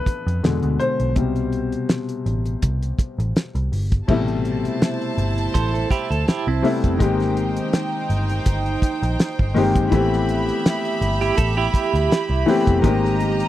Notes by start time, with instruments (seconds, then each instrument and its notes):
Already playing: grand piano D3 E3 B3 A4 B4
0.06 kick, closed hi-hat
0.27 picked electric bass F2, closed hi-hat
0.43 picked electric bass E2, grand piano B2 D3 G#3, snare, closed hi-hat
0.63 picked electric bass D2, closed hi-hat
0.80 grand piano C5, closed hi-hat
1.00 picked electric bass B1, closed hi-hat
1.16 picked electric bass C2, grand piano B2 C3 G3, kick, closed hi-hat
1.36 closed hi-hat
1.53 closed hi-hat
1.72 closed hi-hat
1.89 snare, closed hi-hat
2.09 closed hi-hat
2.26 picked electric bass A1, closed hi-hat
2.45 closed hi-hat
2.62 picked electric bass C2, kick, closed hi-hat
2.83 closed hi-hat
2.99 kick, closed hi-hat
3.18 picked electric bass A1, closed hi-hat
3.36 snare, closed hi-hat
3.55 picked electric bass C2, closed hi-hat
3.72 picked electric bass G1, open hi-hat
3.92 kick, closed hi-hat
4.08 picked electric bass A1, grand piano B2 C3 G3 A3 E4, string section E4 C5 A5, kick, crash
4.28 closed hi-hat
4.45 closed hi-hat
4.65 closed hi-hat
4.82 snare, closed hi-hat
5.02 closed hi-hat
5.18 picked electric bass G1, closed hi-hat
5.38 closed hi-hat
5.54 picked electric bass A1, clean electric guitar A4 C5, kick, closed hi-hat
5.74 clean electric guitar A4, closed hi-hat
5.90 clean electric guitar E4 G4, kick, closed hi-hat
6.11 picked electric bass D2, clean electric guitar A4, closed hi-hat
6.28 clean electric guitar E4 G4, snare, closed hi-hat
6.47 picked electric bass C2, clean electric guitar C4 E4
6.62 grand piano C3 G3 A3 B3 E4, open hi-hat
6.84 picked electric bass F1, kick, closed hi-hat
6.99 picked electric bass G#1, grand piano D#3 G#3 A#3 C4 G4, string section D#4 C5 G5, kick, closed hi-hat
7.20 snare, closed hi-hat
7.37 closed hi-hat
7.57 closed hi-hat
7.73 snare, closed hi-hat
8.10 picked electric bass G1, closed hi-hat
8.30 closed hi-hat
8.46 picked electric bass G1, kick, closed hi-hat
8.66 closed hi-hat
8.82 kick, closed hi-hat
9.03 picked electric bass A#1, closed hi-hat
9.20 snare, closed hi-hat
9.39 picked electric bass G1, kick
9.54 picked electric bass G1, grand piano D#3 G#3 A#3 C4 G4, open hi-hat
9.75 kick, closed hi-hat
9.91 picked electric bass A1, grand piano E3 A3 B3 C4 G4, string section G4 E5 B5, kick, closed hi-hat
10.13 snare
10.29 closed hi-hat
10.49 closed hi-hat
10.66 snare, closed hi-hat
10.85 closed hi-hat
11.01 picked electric bass G1, closed hi-hat
11.21 clean electric guitar E4 G4, closed hi-hat
11.38 picked electric bass A1, clean electric guitar A4, kick, closed hi-hat
11.57 clean electric guitar E4 G4
11.74 kick, closed hi-hat
11.94 picked electric bass D2, closed hi-hat
12.10 muted picked electric bass stroke, snare, closed hi-hat
12.30 picked electric bass C2
12.46 grand piano E3 A3 B3 C4 G4, open hi-hat
12.67 picked electric bass F1, kick, closed hi-hat
12.82 picked electric bass G#1, grand piano D#3 G#3 A#3 C4 G4, string section G4 D#5 A#5, kick, closed hi-hat
13.05 snare
13.20 closed hi-hat
13.40 closed hi-hat